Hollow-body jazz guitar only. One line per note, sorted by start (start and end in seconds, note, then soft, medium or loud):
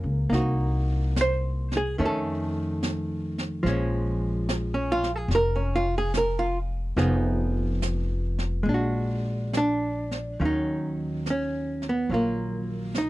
0.00 0.29 F#3 medium
0.00 0.28 A#3 soft
0.00 0.32 C#4 soft
0.00 0.33 F4 soft
0.00 0.34 A#4 medium
0.30 1.98 A#3 soft
0.30 1.99 D#4 soft
0.34 2.00 F#4 soft
1.21 1.74 C5 medium
1.77 1.98 G#4 medium
1.98 3.63 D#3 medium
1.98 3.65 A3 medium
1.98 3.66 C#4 medium
2.05 3.38 A4 medium
3.63 6.96 F3 medium
3.63 6.97 G#3 medium
3.68 4.73 C#4 medium
4.74 5.03 C#4 medium
4.92 5.11 F4 medium
5.16 5.29 G#4 medium
5.35 5.61 A#4 loud
5.56 5.85 C#4 medium
5.76 5.94 F4 medium
5.98 6.12 G#4 medium
6.17 6.44 A#4 medium
6.39 6.57 F4 medium
6.97 8.63 F3 soft
6.97 8.67 B3 medium
6.97 8.67 D#4 soft
6.97 8.67 G#4 medium
8.63 10.38 G#3 soft
8.69 9.56 D4 soft
8.74 10.41 F#4 medium
9.57 10.40 D4 medium
10.40 13.10 D#3 soft
10.40 12.08 F#3 soft
10.40 11.29 C#4 soft
10.40 10.45 F4 soft
10.45 11.24 D#4 medium
11.30 11.88 C#4 medium
11.89 12.11 B3 medium
12.10 13.10 F#3 soft
12.10 12.13 C#4 soft
12.10 13.10 F4 soft
12.14 12.98 A#3 medium
12.98 13.10 D#4 medium